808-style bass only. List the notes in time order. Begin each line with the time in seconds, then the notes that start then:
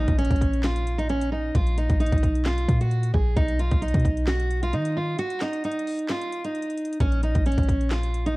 0.08 A#1
0.31 A#1
1.55 A#1
1.90 A#1
2.12 A#1
2.35 B1
2.68 A#2
3.14 A#1
3.37 B1
3.71 B1
3.94 B2
4.05 B1
4.73 D#3
7.00 A#1
7.35 A#1
7.58 A#1